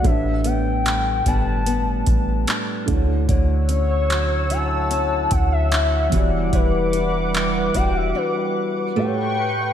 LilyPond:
<<
  \new Staff \with { instrumentName = "Analog synth pad" } { \time 4/4 \key a \mixolydian \tempo 4 = 74 << { r1 | <cis'' e'''>2.~ <cis'' e'''>8 <g d'''>8~ | <g d'''>2. <b' cis'''>4 | } \\ { r1 | fis''1~ | fis''2. g''4 | } >> }
  \new Staff \with { instrumentName = "Soft synth lead" } { \time 4/4 \key a \mixolydian e''8 g''4 a''4 r4. | cis''4. a''4 fis''16 e''8. r8 | b'4. g''16 e''16 b'4 g''4 | }
  \new Staff \with { instrumentName = "Felt piano" } { \time 4/4 \key a \mixolydian <a, a d' g' b'>2.~ <a, a d' g' b'>8 <d a e' fis' cis''>8~ | <d a e' fis' cis''>2.~ <d a e' fis' cis''>8 <e b fis' g' d''>8~ | <e b fis' g' d''>2. <a, a g' b' c'' cis''>4 | }
  \new Staff \with { instrumentName = "Steel-string acoustic guitar" } { \time 4/4 \key a \mixolydian a,8 b8 g8 <g b d'>8 b4 d'8 d8 | d8 cis'8 fis8 <fis cis' e'>8 cis'4 e'8 e8 | e8 d'8 g8 <g d' fis'>8 d'4 a4 | }
  \new Staff \with { instrumentName = "808-style bass" } { \clef bass \time 4/4 \key a \mixolydian a,,4. g,,4 a,,8 r8 d,8 | d,2~ d,8 d,4 e,,8 | e,,4. e,,8 r2 | }
  \new DrumStaff \with { instrumentName = "Drums" } \drummode { \time 4/4 <hh bd>8 hh8 <hc hh>8 <hh bd>8 hh8 <hh bd>8 <hc hh>8 <hh bd>8 | <hh bd>8 hh8 <hc hh>8 hh8 hh8 <hh bd>8 <hc hh>8 <hh bd>8 | <hh bd>8 hh8 <hc hh>8 <hh bd>8 r4 r4 | }
>>